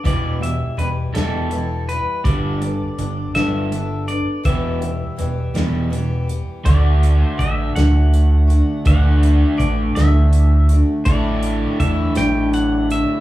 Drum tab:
HH |xxxxxx|xxxxxx|xxxxxx|xxxxxx|
SD |---o--|---o--|---o--|---o--|
BD |o-----|o-----|o-----|o-o---|

HH |xxxxxx|xxxxxx|
SD |---o--|---o--|
BD |o-o---|o-o---|